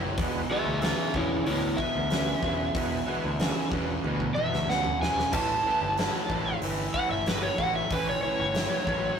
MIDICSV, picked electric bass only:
0, 0, Header, 1, 2, 480
1, 0, Start_track
1, 0, Tempo, 643777
1, 135, Time_signature, 4, 2, 24, 8
1, 6857, End_track
2, 0, Start_track
2, 0, Title_t, "Picked electric bass"
2, 0, Program_c, 0, 34
2, 0, Note_on_c, 0, 30, 94
2, 132, Note_off_c, 0, 30, 0
2, 132, Note_on_c, 0, 28, 95
2, 325, Note_off_c, 0, 28, 0
2, 495, Note_on_c, 0, 38, 95
2, 686, Note_off_c, 0, 38, 0
2, 851, Note_on_c, 0, 28, 90
2, 1044, Note_off_c, 0, 28, 0
2, 1092, Note_on_c, 0, 38, 93
2, 1285, Note_off_c, 0, 38, 0
2, 1456, Note_on_c, 0, 38, 88
2, 1743, Note_off_c, 0, 38, 0
2, 1808, Note_on_c, 0, 28, 94
2, 2002, Note_off_c, 0, 28, 0
2, 2046, Note_on_c, 0, 28, 94
2, 2241, Note_off_c, 0, 28, 0
2, 2418, Note_on_c, 0, 38, 87
2, 2608, Note_off_c, 0, 38, 0
2, 2770, Note_on_c, 0, 28, 88
2, 2964, Note_off_c, 0, 28, 0
2, 3017, Note_on_c, 0, 38, 94
2, 3208, Note_off_c, 0, 38, 0
2, 3374, Note_on_c, 0, 38, 81
2, 3662, Note_off_c, 0, 38, 0
2, 3737, Note_on_c, 0, 28, 93
2, 3974, Note_off_c, 0, 28, 0
2, 3974, Note_on_c, 0, 33, 93
2, 4167, Note_off_c, 0, 33, 0
2, 4335, Note_on_c, 0, 31, 83
2, 4527, Note_off_c, 0, 31, 0
2, 4694, Note_on_c, 0, 33, 93
2, 4887, Note_off_c, 0, 33, 0
2, 4931, Note_on_c, 0, 31, 89
2, 5125, Note_off_c, 0, 31, 0
2, 5298, Note_on_c, 0, 31, 84
2, 5585, Note_off_c, 0, 31, 0
2, 5654, Note_on_c, 0, 33, 88
2, 5847, Note_off_c, 0, 33, 0
2, 5895, Note_on_c, 0, 33, 94
2, 6087, Note_off_c, 0, 33, 0
2, 6258, Note_on_c, 0, 31, 97
2, 6450, Note_off_c, 0, 31, 0
2, 6613, Note_on_c, 0, 33, 92
2, 6806, Note_off_c, 0, 33, 0
2, 6857, End_track
0, 0, End_of_file